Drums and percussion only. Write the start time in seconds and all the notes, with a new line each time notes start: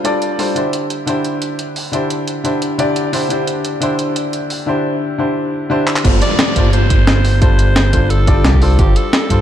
0.05 closed hi-hat
0.22 closed hi-hat
0.39 open hi-hat
0.56 closed hi-hat
0.73 closed hi-hat
0.90 closed hi-hat
1.07 closed hi-hat
1.25 closed hi-hat
1.42 closed hi-hat
1.59 closed hi-hat
1.76 open hi-hat
1.93 closed hi-hat
2.10 closed hi-hat
2.28 closed hi-hat
2.45 closed hi-hat
2.62 closed hi-hat
2.79 closed hi-hat
2.96 closed hi-hat
3.13 open hi-hat
3.30 closed hi-hat
3.47 closed hi-hat
3.65 closed hi-hat
3.82 closed hi-hat
3.99 closed hi-hat
4.16 closed hi-hat
4.33 closed hi-hat
4.50 open hi-hat
5.87 clap
5.96 clap
6.05 kick, closed hi-hat, crash
6.22 closed hi-hat
6.39 snare, closed hi-hat
6.56 kick, closed hi-hat
6.73 closed hi-hat
6.90 kick, closed hi-hat
7.07 snare, closed hi-hat
7.25 open hi-hat
7.42 kick, closed hi-hat
7.59 closed hi-hat
7.76 snare, closed hi-hat
7.93 kick, closed hi-hat
8.10 closed hi-hat
8.27 kick, closed hi-hat
8.45 snare, closed hi-hat
8.53 kick
8.62 open hi-hat
8.79 kick, closed hi-hat
8.96 closed hi-hat
9.13 snare, closed hi-hat
9.30 kick, closed hi-hat